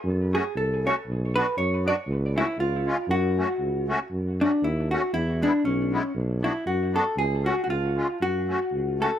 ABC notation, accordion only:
X:1
M:2/4
L:1/8
Q:"Swing" 1/4=118
K:F#m
V:1 name="Accordion"
z [A,CF] z [A,CF] | z [B,DF] z [B,DF] | z [A,CF] z [G,C^E] | z [A,CF] z [A,CF] |
z [A,CF] z [A,CF] | z [G,B,E] z [G,B,E] | z [B,DF] z [B,DF] | z [A,CF] z [G,C^E] |
z [A,CF] z [A,CF] |]